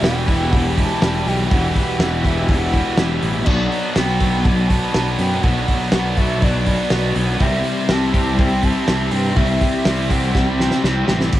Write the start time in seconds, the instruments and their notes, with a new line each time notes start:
Already playing: overdriven electric guitar E2 B2, clean electric guitar G3, string machine G4 E5 B5
0.01 fingered electric bass E1, distorted electric guitar E2 B2 E3, overdriven electric guitar E3 G3 E4 G4, clean electric guitar B3, soft synth lead G5, snare, open hi-hat
0.26 distorted electric guitar E2 B2 E3, overdriven electric guitar E3 G3 E4 G4, kick, open hi-hat
0.50 distorted electric guitar E2 B2 E3, clean electric guitar E4, soft synth lead F#5, kick, open hi-hat
0.75 overdriven electric guitar E3 G3 E4 G4, clean electric guitar B3, soft synth lead A5, kick, open hi-hat
1.00 fingered electric bass E1, distorted electric guitar E2 B2 E3, overdriven electric guitar E3 G3 E4 G4, clean electric guitar G3, snare, open hi-hat
1.25 fingered electric bass B1, distorted electric guitar E2 B2 E3, clean electric guitar B3, soft synth lead G5, open hi-hat
1.50 fingered electric bass E1, overdriven electric guitar E2 B2 E3 G3 E4 G4, distorted electric guitar E2 B2 E3, clean electric guitar G3, soft synth lead F#5, kick, open hi-hat
1.73 clean electric guitar G3, soft synth lead F#5, kick, open hi-hat
1.99 fingered electric bass E1, distorted electric guitar E2 B2 E3, overdriven electric guitar E3 G3 E4 G4, clean electric guitar B3, snare, open hi-hat
2.23 distorted electric guitar E2 B2 E3, overdriven electric guitar E3 G3 E4 G4, soft synth lead E5, kick, open hi-hat
2.48 distorted electric guitar E2 B2 E3, clean electric guitar E4, soft synth lead F#5, kick, open hi-hat
2.72 overdriven electric guitar E3 G3 E4 G4, clean electric guitar B3, kick, open hi-hat
2.95 fingered electric bass E1, distorted electric guitar E2 B2, overdriven electric guitar E3 G3, clean electric guitar G3, snare, open hi-hat
2.99 distorted electric guitar E3, overdriven electric guitar E4 G4
3.21 fingered electric bass A1, distorted electric guitar E2 B2 E3, clean electric guitar B3, open hi-hat
3.44 fingered electric bass B1, overdriven electric guitar B2 F#3 B3 D4 F#4, distorted electric guitar B2 F#3 B3, string machine F#3 D5 A5, clean electric guitar F#3, soft synth lead D5, kick, crash
3.70 clean electric guitar F#3, open hi-hat
3.93 fingered electric bass B1, distorted electric guitar B2 F#3 B3, overdriven electric guitar F#3 B3 D4 F#4, clean electric guitar B3, soft synth lead G5, snare, open hi-hat
4.20 distorted electric guitar B2 F#3 B3, overdriven electric guitar B3 D4 F#4, clean electric guitar A4, kick, open hi-hat
4.42 distorted electric guitar B2 F#3 B3, clean electric guitar D4, soft synth lead F#5, kick, open hi-hat
4.67 clean electric guitar B3, overdriven electric guitar D4 F#4, soft synth lead A5, kick, open hi-hat
4.72 overdriven electric guitar B3
4.94 fingered electric bass B1, distorted electric guitar B2 F#3 B3, overdriven electric guitar F#3 B3 D4 F#4, clean electric guitar F#3, snare, open hi-hat
5.14 soft synth lead G5
5.18 fingered electric bass F#2, distorted electric guitar B2 F#3 B3, clean electric guitar B3, open hi-hat
5.41 fingered electric bass B1, overdriven electric guitar B2 F#3 B3 D4 F#4, distorted electric guitar B2, clean electric guitar F#3, soft synth lead F#5, kick, open hi-hat
5.45 distorted electric guitar F#3 B3
5.67 clean electric guitar F#3, soft synth lead F#5, kick, open hi-hat
5.92 fingered electric bass B1, distorted electric guitar B2 F#3 B3, overdriven electric guitar F#3 B3 D4 F#4, clean electric guitar B3, snare, open hi-hat
6.17 distorted electric guitar B2 F#3 B3, overdriven electric guitar B3 D4 F#4, clean electric guitar A4, soft synth lead E5, kick, open hi-hat
6.42 distorted electric guitar B2 F#3 B3, clean electric guitar D4, soft synth lead D5, kick, open hi-hat
6.66 clean electric guitar B3, overdriven electric guitar B3 D4 F#4, kick, open hi-hat
6.90 fingered electric bass B1, distorted electric guitar B2 F#3 B3, overdriven electric guitar F#3 B3 D4 F#4, clean electric guitar F#3, snare, open hi-hat
7.14 fingered electric bass B1, distorted electric guitar B2 F#3 B3, clean electric guitar B3, open hi-hat
7.39 fingered electric bass C2, overdriven electric guitar C3 E3 G3 C4 E4, distorted electric guitar C3 G3 C4, clean electric guitar G3, string machine G4 E5 B5 C6, soft synth lead E5, kick, open hi-hat
7.64 clean electric guitar G3, open hi-hat
7.88 fingered electric bass C2, distorted electric guitar C3 G3 C4, overdriven electric guitar E3 G3 C4 E4, soft synth lead A5, snare, open hi-hat
8.12 distorted electric guitar C3 G3 C4, overdriven electric guitar G3 C4 E4, clean electric guitar G4, kick, open hi-hat
8.37 distorted electric guitar C3 G3 C4, clean electric guitar E4, soft synth lead G5, kick, open hi-hat
8.62 overdriven electric guitar G3 C4 E4, soft synth lead A5, kick, open hi-hat
8.86 fingered electric bass C2, distorted electric guitar C3 G3 C4, overdriven electric guitar E3 G3 C4 E4, clean electric guitar G3, snare, open hi-hat
9.10 fingered electric bass G2, distorted electric guitar C3 G3 C4, soft synth lead G5, open hi-hat
9.35 fingered electric bass C2, distorted electric guitar C3 G3 C4, overdriven electric guitar C3 E3 G3 C4 E4, clean electric guitar G3, soft synth lead E5, kick, open hi-hat
9.61 clean electric guitar G3, soft synth lead E5, kick, open hi-hat
9.84 fingered electric bass C2, distorted electric guitar C3 G3 C4, overdriven electric guitar E3 G3 C4 E4, snare, open hi-hat
10.08 distorted electric guitar C3 G3 C4, overdriven electric guitar G3 C4 E4, clean electric guitar G4, soft synth lead F#5, kick, open hi-hat
10.32 distorted electric guitar C3 G3 C4, clean electric guitar E4, soft synth lead G5, kick, snare
10.59 overdriven electric guitar G3 C4 E4, snare
10.71 snare
10.82 fingered electric bass C2, distorted electric guitar C3 G3 C4, overdriven electric guitar E3 G3 C4 E4, clean electric guitar G3, snare
11.06 fingered electric bass A1, distorted electric guitar C3 G3 C4, clean electric guitar B3, snare
11.21 snare
11.32 fingered electric bass G1, overdriven electric guitar G2 D3 G3 B3 D4 G4, string machine G4 D5 F#5 B5, kick, crash